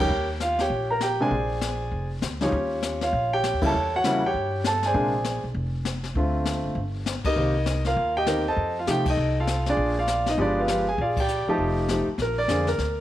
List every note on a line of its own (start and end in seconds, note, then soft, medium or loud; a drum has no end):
0.00 0.28 G4 medium
0.00 0.28 A#4 medium
0.00 0.28 C#5 medium
0.00 0.27 G5 loud
0.10 0.68 D#2 medium
0.10 brush sweep soft
0.40 0.59 F4 medium
0.40 0.58 F5 loud
0.40 snare medium
0.40 hi-hat pedal soft
0.59 0.88 G4 medium
0.59 0.88 C#5 medium
0.59 0.91 G5 medium
0.59 snare soft
0.70 1.28 A#1 medium
0.70 brush sweep soft
0.70 kick soft
0.90 1.01 A#4 medium
0.90 1.02 A#5 medium
1.01 1.20 G4 medium
1.01 1.21 G5 medium
1.01 snare medium
1.01 hi-hat pedal medium
1.20 1.30 C3 medium
1.20 1.31 G#3 medium
1.20 1.31 A#3 medium
1.20 1.31 D4 medium
1.20 2.08 G#4 medium
1.20 2.08 C5 medium
1.20 2.08 D5 medium
1.20 2.08 G#5 loud
1.31 1.89 A#1 medium
1.31 brush sweep soft
1.31 kick soft
1.61 snare medium
1.61 hi-hat pedal medium
1.91 2.20 F1 medium
1.91 brush sweep soft
1.91 kick soft
2.22 2.50 D2 medium
2.22 snare medium
2.22 hi-hat pedal medium
2.41 2.51 C#3 medium
2.41 2.52 F3 medium
2.41 2.52 G3 medium
2.41 2.99 C#4 medium
2.41 2.52 D#4 medium
2.41 2.99 F4 medium
2.41 2.99 G4 medium
2.41 3.01 C#5 medium
2.41 snare soft
2.52 3.10 D#2 medium
2.52 brush sweep soft
2.52 kick soft
2.83 snare medium
2.83 hi-hat pedal medium
3.01 3.30 F4 medium
3.01 3.30 C#5 medium
3.01 3.33 F5 medium
3.01 snare soft
3.13 3.51 A#1 medium
3.13 brush sweep soft
3.13 kick soft
3.33 3.61 G4 medium
3.33 3.62 C#5 medium
3.33 3.64 G5 loud
3.44 snare medium
3.44 hi-hat pedal medium
3.54 3.63 D#2 medium
3.62 3.73 C#2 medium
3.62 3.72 C#3 medium
3.62 3.72 G3 medium
3.62 3.72 A#3 medium
3.62 3.73 E4 medium
3.62 kick medium
3.62 ride medium
3.66 3.92 A4 medium
3.66 3.93 C#5 medium
3.66 3.95 A5 loud
3.74 4.31 E2 medium
3.74 brush sweep soft
3.96 4.23 F#4 medium
3.96 4.23 C#5 medium
3.96 4.25 F#5 loud
4.04 4.21 C#3 medium
4.04 4.21 G3 medium
4.04 4.22 A#3 medium
4.04 4.22 E4 medium
4.04 snare medium
4.04 hi-hat pedal medium
4.26 4.64 G4 medium
4.26 4.64 C#5 medium
4.26 4.68 G5 medium
4.34 4.92 G2 medium
4.34 brush sweep soft
4.34 kick soft
4.64 4.84 A4 medium
4.64 4.83 A5 loud
4.64 snare medium
4.64 hi-hat pedal medium
4.83 5.41 G#4 medium
4.83 5.41 C5 medium
4.83 5.41 G#5 medium
4.83 snare soft
4.87 5.41 D5 medium
4.94 5.40 A#1 medium
4.94 5.11 C3 medium
4.94 5.11 G#3 medium
4.94 5.11 A#3 medium
4.94 5.11 D4 medium
4.94 brush sweep soft
4.94 kick soft
5.25 snare medium
5.25 hi-hat pedal medium
5.44 5.54 B1 medium
5.54 6.12 F1 medium
5.54 brush sweep soft
5.54 kick soft
5.85 snare medium
5.85 hi-hat pedal medium
6.04 snare soft
6.15 6.61 D2 medium
6.15 6.76 D3 medium
6.15 6.77 A3 medium
6.15 6.77 C4 medium
6.15 6.77 F4 medium
6.15 brush sweep soft
6.15 kick soft
6.45 snare medium
6.45 hi-hat pedal medium
6.64 6.74 F#1 medium
6.75 7.21 G1 medium
6.75 brush sweep soft
6.75 kick soft
7.06 snare medium
7.06 hi-hat pedal medium
7.24 7.82 D#4 medium
7.24 7.36 G4 medium
7.24 7.82 A#4 medium
7.24 7.81 D#5 loud
7.24 muted upright bass stroke soft
7.24 kick medium
7.24 ride medium
7.36 7.93 C2 medium
7.36 7.53 D#3 medium
7.36 7.53 A#3 medium
7.36 7.53 C4 medium
7.36 7.54 G4 medium
7.36 brush sweep soft
7.66 snare medium
7.66 hi-hat pedal soft
7.85 8.14 F4 medium
7.85 8.14 A#4 medium
7.85 8.14 F5 loud
7.85 snare soft
7.96 8.54 D#2 medium
7.96 brush sweep soft
7.96 kick soft
8.17 8.45 G4 medium
8.17 8.45 D#5 medium
8.17 8.47 G5 loud
8.27 8.44 D#3 medium
8.27 8.44 A#3 medium
8.27 8.44 C4 medium
8.27 8.44 A#4 medium
8.27 snare medium
8.27 hi-hat pedal medium
8.48 8.75 A4 medium
8.48 8.75 C5 medium
8.48 8.75 D#5 medium
8.48 8.78 A5 loud
8.56 8.85 F2 medium
8.56 brush sweep soft
8.56 kick soft
8.79 8.88 F4 medium
8.79 8.89 F5 medium
8.87 9.15 C3 medium
8.87 9.04 F3 medium
8.87 9.04 A3 medium
8.87 9.04 D#4 medium
8.87 9.04 G4 medium
8.87 9.08 G5 loud
8.87 snare medium
8.87 hi-hat pedal medium
9.06 9.36 D#4 medium
9.06 9.36 A4 medium
9.06 kick medium
9.06 ride medium
9.10 9.36 D#5 medium
9.17 9.74 C2 medium
9.17 brush sweep soft
9.40 9.66 F4 medium
9.40 9.66 A4 medium
9.40 9.69 F5 medium
9.47 snare medium
9.47 hi-hat pedal medium
9.66 9.96 D4 medium
9.66 9.96 F4 medium
9.66 9.96 G#4 medium
9.66 9.96 D5 medium
9.66 snare soft
9.77 10.34 A#1 medium
9.77 brush sweep medium
9.77 kick soft
9.99 10.25 F4 medium
9.99 10.25 D5 medium
9.99 10.29 F5 medium
10.08 snare medium
10.08 hi-hat pedal medium
10.26 10.39 D#4 medium
10.26 10.39 D#5 medium
10.26 snare soft
10.37 10.95 G1 medium
10.37 10.67 F3 medium
10.37 10.67 G#3 medium
10.37 10.67 B3 medium
10.37 10.57 D4 medium
10.37 10.57 F4 medium
10.37 10.67 G4 medium
10.37 10.57 B4 medium
10.37 10.59 D5 medium
10.37 brush sweep soft
10.37 kick soft
10.60 10.86 F4 medium
10.60 10.87 B4 medium
10.60 10.89 F5 medium
10.68 10.85 F3 medium
10.68 10.85 G#3 medium
10.68 10.86 B3 medium
10.68 10.86 G4 medium
10.68 snare medium
10.68 hi-hat pedal medium
10.89 10.99 G#4 medium
10.89 10.99 G#5 medium
10.98 11.43 A#1 medium
10.98 11.17 F4 medium
10.98 11.17 G#4 medium
10.98 11.17 D5 medium
10.98 11.06 F5 medium
10.98 brush sweep soft
10.98 kick soft
11.17 11.47 D5 medium
11.17 11.47 G5 medium
11.17 kick medium
11.17 ride medium
11.21 11.47 G4 medium
11.28 hi-hat pedal medium
11.48 11.87 F3 medium
11.48 11.87 A3 medium
11.48 11.87 D#4 medium
11.48 11.87 G4 medium
11.48 12.05 A4 medium
11.48 12.05 C5 medium
11.48 12.05 D#5 medium
11.48 12.05 A5 medium
11.48 muted upright bass stroke soft
11.58 12.04 F1 medium
11.58 brush sweep soft
11.58 kick soft
11.88 12.06 F3 medium
11.88 12.06 A3 medium
11.88 12.06 D#4 medium
11.88 12.06 G4 medium
11.88 snare medium
11.88 hi-hat pedal soft
12.07 muted upright bass stroke soft
12.18 12.47 A#1 medium
12.18 12.38 A#4 medium
12.18 brush sweep soft
12.18 kick soft
12.18 snare soft
12.38 12.66 D5 loud
12.48 12.78 F2 medium
12.48 12.66 D3 medium
12.48 12.66 A#3 medium
12.48 12.66 C4 medium
12.48 12.66 G#4 medium
12.48 kick soft
12.48 snare medium
12.48 hi-hat pedal medium
12.67 13.01 A#4 medium
12.67 snare soft
12.78 13.01 D2 medium
12.78 brush sweep soft
12.78 kick soft
12.78 snare soft